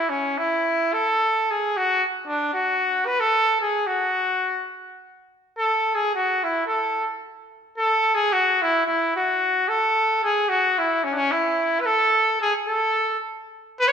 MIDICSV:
0, 0, Header, 1, 2, 480
1, 0, Start_track
1, 0, Key_signature, 3, "major"
1, 0, Tempo, 551978
1, 550, Time_signature, 2, 2, 24, 8
1, 4863, Tempo, 547445
1, 12167, End_track
2, 0, Start_track
2, 0, Title_t, "Trumpet"
2, 0, Program_c, 0, 56
2, 0, Note_on_c, 0, 64, 61
2, 82, Note_on_c, 0, 61, 68
2, 95, Note_off_c, 0, 64, 0
2, 332, Note_on_c, 0, 64, 65
2, 345, Note_off_c, 0, 61, 0
2, 812, Note_on_c, 0, 69, 72
2, 825, Note_off_c, 0, 64, 0
2, 1310, Note_on_c, 0, 68, 59
2, 1323, Note_off_c, 0, 69, 0
2, 1538, Note_on_c, 0, 66, 70
2, 1551, Note_off_c, 0, 68, 0
2, 1775, Note_off_c, 0, 66, 0
2, 1972, Note_on_c, 0, 62, 67
2, 2200, Note_off_c, 0, 62, 0
2, 2205, Note_on_c, 0, 66, 69
2, 2661, Note_on_c, 0, 71, 77
2, 2674, Note_off_c, 0, 66, 0
2, 2781, Note_on_c, 0, 69, 93
2, 2794, Note_off_c, 0, 71, 0
2, 3138, Note_off_c, 0, 69, 0
2, 3144, Note_on_c, 0, 68, 66
2, 3363, Note_on_c, 0, 66, 69
2, 3376, Note_off_c, 0, 68, 0
2, 4126, Note_off_c, 0, 66, 0
2, 4851, Note_on_c, 0, 69, 77
2, 5177, Note_on_c, 0, 68, 70
2, 5190, Note_off_c, 0, 69, 0
2, 5339, Note_off_c, 0, 68, 0
2, 5350, Note_on_c, 0, 66, 63
2, 5603, Note_on_c, 0, 64, 64
2, 5617, Note_off_c, 0, 66, 0
2, 5800, Note_off_c, 0, 64, 0
2, 5805, Note_on_c, 0, 69, 60
2, 6150, Note_off_c, 0, 69, 0
2, 6778, Note_on_c, 0, 69, 80
2, 7103, Note_on_c, 0, 68, 77
2, 7116, Note_off_c, 0, 69, 0
2, 7259, Note_on_c, 0, 66, 76
2, 7272, Note_off_c, 0, 68, 0
2, 7520, Note_on_c, 0, 64, 73
2, 7533, Note_off_c, 0, 66, 0
2, 7728, Note_off_c, 0, 64, 0
2, 7733, Note_on_c, 0, 64, 66
2, 7975, Note_off_c, 0, 64, 0
2, 7992, Note_on_c, 0, 66, 67
2, 8450, Note_on_c, 0, 69, 85
2, 8464, Note_off_c, 0, 66, 0
2, 8927, Note_off_c, 0, 69, 0
2, 8933, Note_on_c, 0, 68, 77
2, 9157, Note_on_c, 0, 66, 76
2, 9170, Note_off_c, 0, 68, 0
2, 9414, Note_on_c, 0, 64, 67
2, 9427, Note_off_c, 0, 66, 0
2, 9638, Note_on_c, 0, 61, 62
2, 9651, Note_off_c, 0, 64, 0
2, 9713, Note_on_c, 0, 62, 46
2, 9726, Note_off_c, 0, 61, 0
2, 9737, Note_on_c, 0, 61, 79
2, 9750, Note_off_c, 0, 62, 0
2, 9882, Note_on_c, 0, 64, 66
2, 9895, Note_off_c, 0, 61, 0
2, 10309, Note_on_c, 0, 71, 63
2, 10322, Note_off_c, 0, 64, 0
2, 10354, Note_on_c, 0, 69, 88
2, 10367, Note_off_c, 0, 71, 0
2, 10838, Note_off_c, 0, 69, 0
2, 10844, Note_on_c, 0, 68, 65
2, 10951, Note_off_c, 0, 68, 0
2, 11078, Note_on_c, 0, 69, 84
2, 11533, Note_off_c, 0, 69, 0
2, 12058, Note_on_c, 0, 71, 95
2, 12129, Note_on_c, 0, 73, 74
2, 12142, Note_off_c, 0, 71, 0
2, 12167, Note_off_c, 0, 73, 0
2, 12167, End_track
0, 0, End_of_file